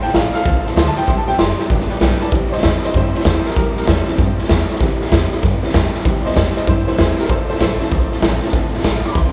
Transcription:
0.02 A1 F4 A4 C5 F5 G5 A5, snare
0.07 C4
0.13 A1 F3 C4 F4 A4 C5 F5 A5, snare, hi-hat pedal
0.34 C4 F4 A4 C5 F5 A5, muted upright bass stroke, snare
0.45 C2 F3 C4 F4 A4 C5 F5 A5, kick, snare
0.64 F4 A4 C5 F5 A5, muted upright bass stroke, snare
0.69 C4
0.76 D2 F3 C4 F4 A4 C5 F5 A5 C6, snare, hi-hat pedal
0.87 A5
0.96 C4 F4 A4 C5 F5 G5 A5, muted upright bass stroke, snare
1.07 C2 C3 G3 C4 E4 G4 C5 E5 G5 C6, kick, snare
1.18 A5
1.27 E2 C4 E4 G4 C5 E5 G5, snare
1.38 F#1 C3 G3 C4 E4 G4 C5 E5 G5 C6, snare, hi-hat pedal
1.58 E4 G4 C5 E5 G5, muted upright bass stroke, snare
1.62 C4
1.69 G1 G3 B3 D4 B4 D5 G5, kick, snare
1.74 G4
1.80 snare
1.89 G3 B3 D4 G4 B4 D5 G5, muted upright bass stroke, snare
2.00 B1 G2 D3 G3 B3 D4 G4 B4 D5 G5, snare, hi-hat pedal
2.20 B3 D4 G4 B4 D5 A5, muted upright bass stroke, snare
2.24 G3
2.31 C2 C3 E3 G3 C4 E4 G4, kick, snare
2.49 E2 G4 C5 D5, snare
2.54 C4 D#5
2.58 snare
2.63 E2 C3 G3 C4 E4 G4 C5 D#5, kick, snare, hi-hat pedal
2.83 E4 G4 C5 D#5, muted upright bass stroke, snare
2.87 C4
2.94 G2 E3 G3 C4 E4 G4 C5, kick, snare
3.13 C4 E4 G4 C5, muted upright bass stroke, snare
3.20 snare
3.25 E2 C3 G3 C4 E4 G4 C5, kick, snare, hi-hat pedal
3.45 C4 G4 A#4, muted upright bass stroke, snare
3.51 snare
3.56 C2 C3 G3 C4 E4 G4 A#4, kick, snare
3.76 E2 C4 E4 G4 A#4, snare
3.82 snare
3.87 E2 C3 G3 C4 E4 G4 C5, kick, snare, hi-hat pedal
4.06 E3 G3 C4 E4 G4, muted upright bass stroke, snare
4.18 G2 G3 C4 E4 G4, kick, snare
4.38 C4 E4 G4, muted upright bass stroke, snare
4.44 snare
4.49 E2 C3 G3 C4 E4 G4, kick, snare, hi-hat pedal
4.69 C4 E4 G4, muted upright bass stroke, snare
4.75 snare
4.80 C2 C3 E3 G3 C4 E4 G4, kick, snare
4.99 E2 C4 E4 G4, snare
5.06 snare
5.11 E2 C3 G3 C4 E4 G4, kick, snare, hi-hat pedal
5.31 C4 E4 G4, snare
5.42 G2 G3 C4 E4 G4, kick, snare
5.62 E3 G3 C4 E4 G4, muted upright bass stroke, snare
5.69 snare
5.73 E2 C3 G3 C4 E4 G4, kick, snare, hi-hat pedal
5.93 C4 E4 G4, snare
6.00 snare
6.05 C2 C3 E3 G3 C4 E4 G4, kick, snare
6.22 E2 G4 C5 D5
6.26 C4 E4 D#5, snare
6.31 snare
6.35 E2 C3 G3 C4 E4 G4 C5 D#5, kick, snare, hi-hat pedal
6.55 C4 E4 G4 C5 D#5, muted upright bass stroke, snare
6.67 G2 G3 C4 E4 G4 C5, kick, snare
6.87 C4 E4 G4 C5, muted upright bass stroke, snare
6.97 E2 C3 G3 C4 E4 G4 C5, kick, snare, hi-hat pedal
7.17 C4 E4 G4 A#4, muted upright bass stroke, snare
7.24 F3, snare
7.29 F1 C4 F4 A4 C5, kick, snare
7.48 A1 C4 F4 A4 C5, snare
7.55 snare
7.59 A1 F3 C4 F4 A4 C5, kick, snare, hi-hat pedal
7.80 F3 A3 C4 F4 A4, muted upright bass stroke, snare
7.90 C2 F3 C4 F4 A4, kick, snare
8.10 C4 F4 A4, muted upright bass stroke, snare
8.21 A1 F3 C4 F4 A4, kick, snare, hi-hat pedal
8.40 C4 F4 A4, muted upright bass stroke, snare
8.48 snare
8.52 F1 F3 A3 C4 F4 A4, kick, snare
8.72 A1 C4 F4 A4, snare
8.79 snare
8.84 A1 F3 C4 F4 A4, kick, snare, hi-hat pedal
9.03 C4 A4 D6, muted upright bass stroke, snare
9.12 C2 F3 C4 B5, kick, snare
9.17 F4 A4 C6

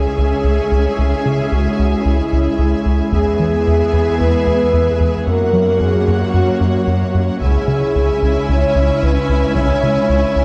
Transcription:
Already playing: C#2 G#3 C#4 E4 G#4 C#5 E5 G#5
0.18 C#2
0.44 C#2
0.72 C#2
0.98 C#2 G#4
1.26 C#3
1.52 C#2 F#4
1.79 C#2
2.06 C#2 E4
2.33 C#2
2.59 C#2 E4
2.86 C#2
3.12 E2 B3 G#4 E5 G#5, taiko
3.40 E3
3.68 E2
3.93 E2
4.18 E2 B4
4.47 E2
4.74 E2
5.00 E2
5.26 F#2 F#3 A#3 C#4 F#4 A#4 C#5 F#5
5.53 F#3
5.80 F#2 G#4
6.08 F#2
6.34 F#2 F#4
6.61 F#2
6.87 F#2
7.15 F#2
7.41 C#2 G#3 C#4 E4 G#4 E5 G#5, taiko
7.68 C#3
7.95 C#2
8.22 C#2
8.49 C#2 C#5
8.75 C#2
9.03 C#2 B4
9.29 C#2
9.55 C#2 C#5, taiko
9.83 C#3
10.09 C#2
10.36 C#2

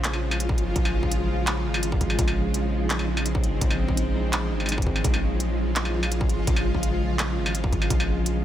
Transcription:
Already playing: A#1 C#3 F3 G#3 F4
0.04 clap, closed hi-hat
0.13 struck metal
0.31 struck metal
0.40 closed hi-hat
0.49 kick
0.58 closed hi-hat
0.76 A#1, kick, closed hi-hat
0.85 struck metal
1.03 kick
1.11 closed hi-hat
1.47 clap, closed hi-hat, struck metal
1.65 G#1
1.74 struck metal
1.83 closed hi-hat
1.92 kick
2.01 G#1, kick, closed hi-hat
2.10 struck metal
2.18 A#1 C4 D#4, kick, closed hi-hat
2.28 struck metal
2.54 closed hi-hat
2.90 clap, closed hi-hat
2.99 struck metal
3.17 struck metal
3.26 closed hi-hat
3.35 kick
3.44 closed hi-hat
3.61 A#1, kick, closed hi-hat
3.71 struck metal
3.88 kick
3.97 closed hi-hat
4.33 clap, closed hi-hat, struck metal
4.51 G#1
4.60 struck metal
4.66 closed hi-hat, struck metal
4.72 struck metal
4.78 kick
4.82 closed hi-hat
4.86 G#1, kick
4.96 struck metal
5.04 A#1 F4, kick, closed hi-hat
5.14 struck metal
5.40 closed hi-hat
5.76 clap, closed hi-hat
5.85 struck metal
6.03 struck metal
6.12 closed hi-hat
6.21 kick
6.29 closed hi-hat
6.47 A#1, kick, closed hi-hat
6.56 struck metal
6.74 kick
6.83 closed hi-hat
7.19 clap, closed hi-hat, struck metal
7.37 G#1
7.46 struck metal
7.55 closed hi-hat
7.64 kick
7.72 G#1, kick, closed hi-hat
7.82 struck metal
7.90 A#1 A#3 C4, kick, closed hi-hat
8.00 struck metal
8.26 closed hi-hat

